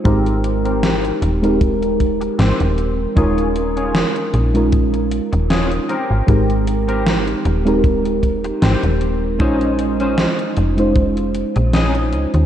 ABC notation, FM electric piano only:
X:1
M:4/4
L:1/16
Q:"Swing 16ths" 1/4=77
K:Ab
V:1 name="FM electric piano"
[A,CEGB]6- [A,CEGB] [A,CEGB]8- [A,CEGB] | [A,DEFB]6- [A,DEFB] [A,DEFB]6- [A,DEFB] z2 | [A,CEGB]6- [A,CEGB] [A,CEGB]8- [A,CEGB] | [A,DEFc]6- [A,DEFc] [A,DEFc]8- [A,DEFc] |]